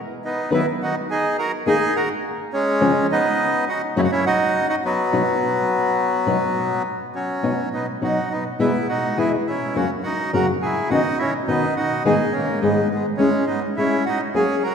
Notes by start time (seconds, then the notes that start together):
0.25 B3 D#4
0.51 D#3 F#3 B3 D#4 E4 B4
0.83 D#4 F#4
1.11 D#4 G#4
1.39 F#4 A#4
1.66 D#3 A#3 D#4 G#4
1.96 F#4 A#4
2.53 G#3 C#4
2.81 F2 C#3 F3 G#3 C#4 F4
3.12 B3 D#4
3.69 D#4 F#4
3.96 F#2 C#3 F#3 A#3 C#4 E4 F#4
4.04 F#4
4.12 C#4 E4
4.26 D#4 F#4
4.69 D#4 F#4
4.85 F#3 B3
5.13 B2 F#3 B3 D#4 F#4
6.26 B2 F#3 B3 D#4 F#4
7.15 F#3 C#4
7.43 B2 F#3 B3 D#4 F#4
7.73 B3 D#4
8.02 B2 F#3 B3 D#4 F#4
8.31 B3 D#4
8.59 E2 B2 E3 G#3 B3 E4
8.89 D#4 F#4
9.17 E2 B2 E3 G#3 B3 E4 G#4
9.47 C#4 E4
9.75 F#2 C#3 F#3 A#3 C#4 F#4
10.03 D#4 F#4
10.33 F#2 C#3 F#3 A#3 C#4 F#4 A#4
10.62 E4 G#4
10.90 B2 D#3 C#4 D#4 F#4
11.19 C#4 E4
11.48 B2 D#3 B3 C#4 D#4 F#4
11.77 D#4 F#4
12.05 G#2 D#3 G#3 B3 D#4 G#4
12.32 A#3 C#4
12.61 G#2 D#3 G#3 B3 D#4 G#4
12.91 G#3 B3
13.17 G#3 C#4 E4
13.46 B3 D#4
13.76 G#3 C#4 E4
14.05 D#4 F#4
14.34 F#3 A#3 C#4 G#4
14.63 F#4 A#4